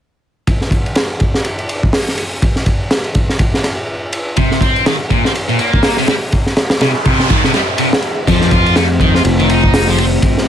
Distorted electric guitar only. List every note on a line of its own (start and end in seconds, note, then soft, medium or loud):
4.37 4.60 C3 medium
4.61 4.85 C4 medium
4.86 4.96 D#3 medium
5.10 5.24 A#2 medium
5.25 5.32 C4 medium
5.49 5.58 A#2 medium
5.59 5.96 A#3 medium
5.98 6.07 C3 medium
6.08 6.14 G3 medium
6.81 6.91 C3 loud
7.05 7.29 C3 medium
7.30 7.42 D#3 medium
7.44 7.51 C3 medium
7.54 7.60 G3 medium
7.79 7.89 C3 medium
8.27 8.51 F3 medium
8.52 8.75 F4 medium
8.76 8.86 A3 medium
9.01 9.14 D#3 medium
9.15 9.22 F4 medium
9.39 9.48 D#3 medium
9.50 9.87 D#4 medium
9.88 9.98 F3 medium
9.98 10.04 C4 medium